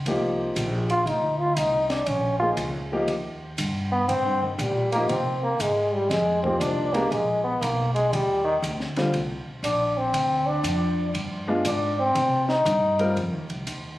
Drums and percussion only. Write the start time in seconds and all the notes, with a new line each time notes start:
0.06 ride
0.56 hi-hat pedal, ride
0.90 ride
1.07 ride
1.57 hi-hat pedal, ride
1.90 snare, ride
2.06 ride
2.57 hi-hat pedal, ride
3.08 ride
3.58 hi-hat pedal, ride
4.09 ride
4.59 hi-hat pedal, ride
4.92 ride
5.09 ride
5.60 hi-hat pedal, ride
6.11 snare, ride
6.44 kick
6.61 hi-hat pedal, ride
6.94 ride
7.12 ride
7.62 hi-hat pedal, ride
7.96 ride
8.13 ride
8.64 hi-hat pedal, ride
8.80 snare
8.96 snare, ride
9.14 ride
9.64 hi-hat pedal, ride
10.14 ride
10.64 hi-hat pedal, ride
11.15 ride
11.65 hi-hat pedal, ride
12.15 ride
12.49 snare
12.66 hi-hat pedal, ride
12.99 ride
13.17 ride
13.50 ride
13.67 hi-hat pedal, ride